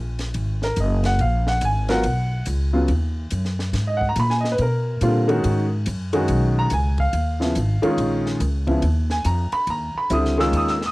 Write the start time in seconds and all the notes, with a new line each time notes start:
Already playing: A#1
0.19 snare, ride
0.34 G#1, ride
0.62 A#4, snare
0.76 F#1 D#5, hi-hat pedal, ride
1.04 F#5, snare, ride
1.19 A#1 F5, ride
1.47 F#5, snare
1.61 G#1 G#5, hi-hat pedal, ride
1.89 F#3 B3 F4 A#4 F#5, snare, ride
2.03 B1, ride
2.46 C#2, hi-hat pedal, ride
2.73 C#3 F#3 B3 F4
2.88 D#2, ride
3.31 F#2, hi-hat pedal, ride
3.45 snare
3.59 snare
3.73 G#2, snare, ride
3.87 D#5
3.97 F#5
4.01 kick
4.09 A#5
4.16 A#2 B5, hi-hat pedal, ride
4.30 G#5, snare
4.40 D#5
4.45 snare
4.52 B4
4.58 B2 A#4, ride
5.01 A#2 D3 G3 C4 F4, hi-hat pedal, ride
5.28 D#3 G#3 C#4 F#4, ride
5.44 G#2, ride
5.86 F#2, hi-hat pedal, ride
6.13 D#3 G#3 C#4 F#4, ride
6.28 B1, ride
6.59 A#5
6.70 C#2 G#5, hi-hat pedal, ride
6.98 F5, kick, ride
7.13 D#2, ride
7.40 C#3 F3 B3 E4, snare
7.55 G#1, hi-hat pedal, ride
7.82 D#3 G#3 C#4 F4, muted upright bass stroke, ride
7.97 A#1, ride
8.26 snare
8.40 C#2, hi-hat pedal, ride
8.67 C#3 F3 B3 E4, kick, ride
8.82 D#2, ride
9.10 G#5, snare
9.25 F2 A#5, hi-hat pedal, ride
9.52 B5, muted upright bass stroke, ride
9.67 D#2 A#5, ride
9.95 B5, muted upright bass stroke
10.10 C#2 D3 G3 C4 E4 D#6, hi-hat pedal, ride
10.25 snare
10.38 D#3 G#3 C#4 F4 E6, snare
10.52 D#2, ride
10.57 D#6
10.68 E6, snare
10.82 snare
10.86 D#6